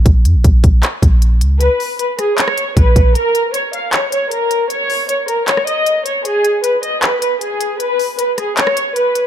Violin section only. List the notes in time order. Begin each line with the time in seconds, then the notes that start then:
1.60 B4
1.99 B4
2.19 G#4
2.38 C#5
2.77 B4
3.16 A#4
3.54 C#5
3.74 F5
3.93 C#5
4.12 C#5
4.32 A#4
4.71 C#5
5.08 C#5
5.28 A#4
5.48 C#5
5.67 D#5
6.05 C#5
6.25 G#4
6.64 B4
6.83 D#5
7.02 B4
7.21 B4
7.41 G#4
7.79 B4
8.18 B4
8.38 G#4
8.57 C#5
8.96 B4